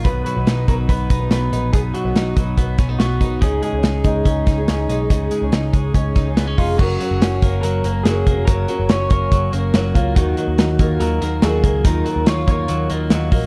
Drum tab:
CC |--------|--------|--------|--------|
HH |xxxxxxxx|xxxxxxxx|xxxxxxxx|xxxxxxxo|
SD |--o---o-|--o--oo-|--o--oo-|--o--oo-|
BD |o--ooo--|o--ooo-o|o--ooo--|o--ooo-o|

CC |x-------|--------|--------|--------|
HH |-xxxxxxx|xxxxxxxx|xxxxxxxx|xxxxxxxo|
SD |--o---o-|--o---o-|--o--oo-|--o---o-|
BD |o--o---o|o--oo--o|o--o---o|o--o---o|